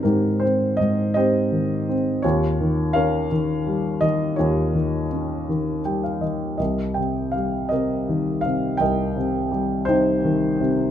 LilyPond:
<<
  \new Staff \with { instrumentName = "Grand piano" } { \time 6/8 \key ees \mixolydian \tempo 4. = 55 << { bes'8 c''8 ees''8 ees''4 r8 | des''4 f''4. ees''8 | des''2 g''16 f''16 ees''8 | ees''8 g''8 f''8 ees''4 f''8 |
g''4. c''4. | } \\ { <ees' g'>4. <g' c''>4. | <f' g'>4 <bes' des''>4. r8 | <f' g'>2 r4 | <g' bes'>4. <g' bes'>4. |
<bes' ees''>4. <ees' g'>4. | } >> }
  \new Staff \with { instrumentName = "Grand piano" } { \clef bass \time 6/8 \key ees \mixolydian <aes, ees c'>8 c'8 aes,8 c'8 ees8 c'8 | ees,8 ees8 des'8 ees8 g8 ees8 | ees,8 ees8 des'8 ees8 g8 ees8 | c,8 c8 g8 c8 ees8 c8 |
c,8 c8 g8 c8 ees8 c8 | }
>>